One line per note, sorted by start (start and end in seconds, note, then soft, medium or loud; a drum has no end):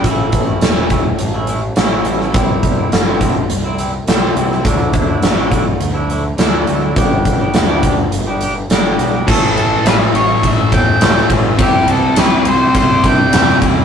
0.04 0.54 A1 medium
0.04 0.77 A2 medium
0.04 0.77 E3 medium
0.04 0.48 A3 medium
0.04 0.47 C#4 medium
0.04 0.46 E4 medium
0.04 kick medium
0.04 closed hi-hat medium
0.32 kick medium
0.32 closed hi-hat medium
0.47 0.76 A3 medium
0.47 0.75 C#4 medium
0.47 0.75 E4 medium
0.61 1.12 E1 medium
0.61 snare loud
0.61 closed hi-hat medium
0.75 1.20 A2 medium
0.75 0.90 E3 medium
0.75 0.90 A3 medium
0.75 0.91 C#4 medium
0.75 0.92 E4 medium
0.90 1.07 E3 medium
0.90 1.06 A3 medium
0.90 1.05 C#4 medium
0.90 1.05 E4 medium
0.90 kick medium
0.90 closed hi-hat medium
1.06 muted clean electric guitar stroke soft
1.19 1.70 A1 medium
1.19 closed hi-hat medium
1.34 1.47 A3 medium
1.34 1.48 C#4 medium
1.34 1.49 E4 medium
1.47 1.62 E3 medium
1.47 1.61 A3 medium
1.47 1.61 C#4 medium
1.47 1.62 E4 medium
1.47 closed hi-hat medium
1.62 muted clean electric guitar stroke soft
1.76 2.02 A1 medium
1.76 2.32 A2 medium
1.76 2.04 E3 medium
1.76 2.04 A3 medium
1.76 2.05 C#4 medium
1.76 2.07 E4 medium
1.76 snare loud
1.76 closed hi-hat medium
2.05 2.30 A1 medium
2.05 2.34 E3 medium
2.05 2.21 A3 medium
2.05 2.20 C#4 medium
2.05 2.20 E4 medium
2.05 closed hi-hat medium
2.20 2.34 A3 medium
2.20 2.33 C#4 medium
2.20 2.35 E4 medium
2.20 snare soft
2.34 2.84 C2 medium
2.34 3.06 C3 medium
2.34 3.07 E3 medium
2.34 2.79 G3 loud
2.34 2.78 C4 medium
2.34 2.77 E4 medium
2.34 kick loud
2.34 closed hi-hat medium
2.63 kick medium
2.63 closed hi-hat medium
2.78 3.06 G3 medium
2.78 3.05 C4 medium
2.78 3.06 E4 medium
2.92 3.42 G1 medium
2.92 snare medium
2.92 closed hi-hat medium
3.07 3.51 C3 medium
3.07 3.20 E3 medium
3.07 3.20 G3 medium
3.07 3.21 C4 medium
3.07 3.23 E4 medium
3.21 3.36 E3 medium
3.21 3.36 G3 medium
3.21 3.35 C4 medium
3.21 3.35 E4 medium
3.21 kick medium
3.21 closed hi-hat medium
3.36 muted clean electric guitar stroke soft
3.50 4.00 C2 medium
3.50 closed hi-hat medium
3.64 3.78 G3 medium
3.64 3.79 C4 medium
3.64 3.79 E4 medium
3.78 3.93 E3 medium
3.78 3.92 G3 medium
3.78 3.92 C4 medium
3.78 3.92 E4 medium
3.78 closed hi-hat medium
3.93 muted clean electric guitar stroke soft
4.07 4.32 C2 medium
4.07 4.63 C3 medium
4.07 4.35 E3 medium
4.07 4.36 G3 medium
4.07 4.36 C4 medium
4.07 4.38 E4 medium
4.07 snare loud
4.07 closed hi-hat medium
4.36 4.61 C2 medium
4.36 4.63 E3 medium
4.36 4.52 G3 medium
4.36 4.51 C4 medium
4.36 4.50 E4 medium
4.36 closed hi-hat medium
4.51 4.65 G3 soft
4.51 4.64 C4 medium
4.51 4.63 E4 medium
4.51 snare soft
4.64 5.15 D2 medium
4.64 5.37 D3 medium
4.64 5.37 F#3 medium
4.64 5.09 A3 medium
4.64 5.09 D4 medium
4.64 5.07 E4 medium
4.64 kick loud
4.64 closed hi-hat medium
4.93 kick medium
4.93 closed hi-hat medium
5.08 5.36 A3 medium
5.08 5.36 D4 medium
5.08 5.35 E4 medium
5.22 5.73 A1 medium
5.22 snare loud
5.22 closed hi-hat medium
5.36 5.81 D3 medium
5.36 5.49 F#3 medium
5.36 5.50 A3 medium
5.36 5.51 D4 medium
5.36 5.51 E4 medium
5.50 5.65 F#3 medium
5.50 5.65 A3 medium
5.50 5.64 D4 medium
5.50 5.64 E4 medium
5.50 kick medium
5.50 closed hi-hat medium
5.65 muted clean electric guitar stroke soft
5.80 6.30 D2 medium
5.80 closed hi-hat medium
5.94 6.09 A3 medium
5.94 6.09 D4 medium
5.94 6.10 E4 medium
6.09 6.24 F#3 medium
6.09 6.24 A3 medium
6.09 6.24 D4 medium
6.09 6.24 E4 medium
6.09 closed hi-hat medium
6.25 muted clean electric guitar stroke soft
6.37 6.63 D2 medium
6.37 6.94 D3 medium
6.37 6.65 F#3 medium
6.37 6.66 A3 medium
6.37 6.67 D4 medium
6.37 6.67 E4 medium
6.37 snare loud
6.37 closed hi-hat medium
6.66 6.92 D2 medium
6.66 6.94 F#3 medium
6.66 6.82 A3 medium
6.66 6.81 D4 medium
6.66 6.80 E4 medium
6.66 closed hi-hat medium
6.81 6.95 A3 medium
6.81 6.95 D4 medium
6.81 6.94 E4 medium
6.96 7.46 G1 medium
6.96 7.68 G2 medium
6.96 7.68 D3 medium
6.96 7.41 G3 medium
6.96 7.40 B3 loud
6.96 7.40 D4 medium
6.96 7.38 G4 loud
6.96 kick loud
6.96 closed hi-hat medium
7.25 kick medium
7.25 closed hi-hat medium
7.40 7.69 G3 soft
7.40 7.68 B3 medium
7.40 7.68 D4 medium
7.40 7.67 G4 medium
7.54 8.04 D2 medium
7.54 snare loud
7.54 closed hi-hat medium
7.68 8.13 G2 medium
7.68 8.12 D3 medium
7.68 7.82 G3 medium
7.68 7.82 B3 medium
7.68 7.83 D4 medium
7.68 7.84 G4 medium
7.83 7.98 G3 medium
7.83 7.98 B3 medium
7.83 7.97 D4 medium
7.83 7.97 G4 medium
7.83 kick medium
7.83 closed hi-hat medium
7.98 muted clean electric guitar stroke soft
8.11 8.61 G1 medium
8.11 closed hi-hat medium
8.27 8.40 G3 medium
8.27 8.41 B3 medium
8.27 8.42 D4 medium
8.27 8.42 G4 medium
8.41 8.55 G3 medium
8.41 8.55 B3 medium
8.41 8.54 D4 medium
8.41 8.54 G4 medium
8.41 closed hi-hat medium
8.55 muted clean electric guitar stroke soft
8.69 8.94 G1 medium
8.69 9.26 G2 medium
8.69 9.26 D3 medium
8.69 8.98 G3 medium
8.69 8.99 B3 medium
8.69 9.00 D4 medium
8.69 9.01 G4 medium
8.69 snare loud
8.69 closed hi-hat medium
8.98 9.23 B1 medium
8.98 9.14 G3 medium
8.98 9.14 B3 medium
8.98 9.13 D4 medium
8.98 closed hi-hat medium
9.02 9.12 G4 medium
9.13 9.27 G3 medium
9.13 9.26 B3 medium
9.13 9.26 D4 medium
9.13 9.26 G4 medium
9.27 9.46 A1 medium
9.27 9.71 A2 medium
9.27 9.85 E3 medium
9.27 9.43 A3 medium
9.27 9.43 C#4 medium
9.27 9.55 A4 medium
9.27 9.41 A4 loud
9.27 kick loud
9.27 crash loud
9.42 9.85 A3 medium
9.42 9.86 C#4 medium
9.42 9.86 A4 medium
9.56 9.74 A1 medium
9.56 9.86 A4 medium
9.56 ride medium
9.84 10.03 A1 medium
9.84 10.29 A2 medium
9.84 10.14 E3 medium
9.84 10.00 A3 medium
9.84 9.99 C#4 loud
9.84 9.98 A4 medium
9.84 9.95 B4 medium
9.84 snare loud
9.84 ride medium
9.99 10.14 A3 medium
9.99 10.14 C#4 medium
9.99 10.14 A4 medium
10.14 10.33 A1 medium
10.14 10.45 C#5 medium
10.14 muted clean electric guitar stroke soft
10.14 ride medium
10.28 10.58 A3 medium
10.28 10.57 C#4 medium
10.28 10.56 A4 medium
10.43 10.62 A1 medium
10.43 10.73 E5 medium
10.43 kick medium
10.43 ride medium
10.57 10.71 A3 medium
10.57 10.72 C#4 medium
10.57 10.73 A4 medium
10.72 10.91 E2 medium
10.72 11.01 E3 medium
10.72 11.00 A3 medium
10.72 11.01 C#4 medium
10.72 11.02 A4 medium
10.72 11.27 G5 medium
10.72 kick medium
10.72 snare soft
10.72 ride medium
11.00 11.20 C#2 medium
11.00 11.44 A2 medium
11.00 11.30 E3 medium
11.00 11.18 A3 medium
11.00 11.16 C#4 medium
11.00 11.15 A4 loud
11.00 snare loud
11.00 ride medium
11.16 11.30 A3 soft
11.16 11.31 C#4 medium
11.16 11.31 A4 medium
11.16 snare soft
11.30 11.49 A1 medium
11.30 11.59 E3 medium
11.30 11.46 A3 medium
11.30 11.46 C#4 medium
11.30 11.44 A4 medium
11.30 kick medium
11.30 ride medium
11.46 11.59 A3 medium
11.46 11.58 C#4 medium
11.46 11.58 A4 medium
11.59 11.78 C2 medium
11.59 12.02 C3 medium
11.59 12.17 E3 medium
11.59 11.75 G3 medium
11.59 13.85 C4 medium
11.59 11.75 E4 loud
11.59 11.87 G4 medium
11.59 11.72 G4 loud
11.59 kick loud
11.59 ride medium
11.74 12.17 G3 medium
11.74 12.18 E4 medium
11.74 12.17 G4 medium
11.86 12.06 C2 medium
11.86 ride medium
11.91 12.16 A4 medium
12.16 12.36 C2 medium
12.16 12.60 C3 medium
12.16 12.47 E3 medium
12.16 12.33 G3 medium
12.16 12.33 E4 medium
12.16 12.30 G4 medium
12.16 12.48 B4 medium
12.16 snare loud
12.16 ride medium
12.32 12.46 G3 medium
12.32 12.47 E4 medium
12.32 12.47 G4 medium
12.45 12.64 C2 medium
12.45 12.75 C5 medium
12.45 muted clean electric guitar stroke soft
12.45 ride medium
12.61 12.90 G3 soft
12.61 12.90 E4 medium
12.61 12.88 G4 medium
12.74 12.93 C2 medium
12.74 13.05 C5 loud
12.74 kick medium
12.74 ride medium
12.89 13.04 G3 medium
12.89 13.04 E4 medium
12.89 13.05 G4 medium
13.04 13.23 G2 medium
13.04 13.33 E3 medium
13.04 13.34 G3 medium
13.04 13.34 E4 medium
13.04 13.35 G4 medium
13.04 13.59 G5 medium
13.04 kick medium
13.04 ride medium
13.32 13.51 E2 medium
13.32 13.77 C3 medium
13.32 13.61 E3 medium
13.32 13.49 G3 medium
13.32 13.47 E4 loud
13.32 13.46 G4 loud
13.32 snare loud
13.32 ride loud
13.48 13.63 G3 soft
13.48 13.64 E4 medium
13.48 13.64 G4 medium
13.48 snare soft
13.62 13.80 E2 medium
13.62 13.85 E3 medium
13.62 13.78 G3 medium
13.62 13.77 E4 medium
13.62 13.75 G4 medium
13.62 kick medium
13.62 ride medium
13.76 13.85 G3 medium
13.76 13.85 E4 medium
13.76 13.85 G4 medium